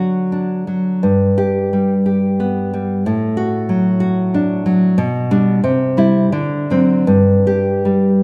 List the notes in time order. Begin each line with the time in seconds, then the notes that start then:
Already playing: D3 F#3 F#4
0.32 D4
0.67 F#3
1.03 G2
1.38 G4
1.73 G3
2.06 G4
2.40 B3
2.74 G3
3.06 A2
3.37 F#4
3.69 F#3
4.00 F#4
4.34 D4
4.66 F#3
4.98 B2
5.31 G3 D4
5.64 C3
5.97 G3 E4
6.32 D3
6.70 F#3 C4
7.07 G2
7.47 G4
7.85 G3